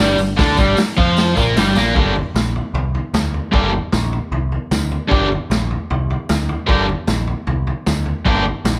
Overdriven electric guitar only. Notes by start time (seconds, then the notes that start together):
Already playing: G2
0.00 G3
0.18 G2
0.37 D3 D4
0.57 G2 G3
0.77 muted overdriven electric guitar stroke
0.97 F3 F4
1.36 A#2 A#3
1.56 G2 G3
1.75 A#2 A#3
1.95 G2 D3 G3 A#3 D4 G4
3.52 G2 D3 G3 A#3 D4 G4
5.09 G2 D3 G3 A#3 D4 G4
6.67 G2 D3 G3 A#3 D4 G4
8.25 G2 D3 G3 A#3 D4 G4